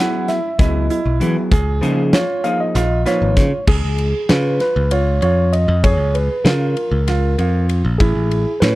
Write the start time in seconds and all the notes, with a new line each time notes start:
Already playing: E4 F#5
0.00 F#3 B3 E4 G#4
0.28 E5, snare, closed hi-hat
0.59 C#2 F#3 B3 E4 G#4, kick, snare, closed hi-hat
0.90 E4, closed hi-hat
1.06 B1
1.20 E3 F#3 B3 E4 G#4, closed hi-hat
1.51 C#2 G#4, kick, closed hi-hat
1.81 C#3 F3 A#3 D#4 G#4, closed hi-hat
2.13 F4 C#5, snare, closed hi-hat
2.44 F3 A#3 D#4 G#4 F5, closed hi-hat
2.60 D#5
2.75 A#1 F4, snare, closed hi-hat
3.05 A#2 F3 D#4 F4 B4 C#5, snare, closed hi-hat
3.22 G#1
3.37 C#3, kick, snare, closed hi-hat
3.67 C#2 G#4, kick, crash
3.84 C#2
3.98 ride
4.29 C#3 F4 B4, snare, ride
4.60 B4, snare, ride
4.76 C#2
4.91 F4 C#5, ride
5.22 F2 F4 C#5, ride
5.53 D#5, ride
5.68 F2
5.84 G#4 C#5, kick, ride
5.99 C#2
6.15 B4, ride
6.44 C#3 F4 A#4, snare, ride
6.77 ride
6.91 C#2
7.08 F4, snare, ride
7.39 F2 F4, ride
7.69 ride
7.85 A#1
7.98 A1 E4 G#4, kick, ride
8.15 A1
8.31 ride
8.60 A2 C#4 B4, snare, ride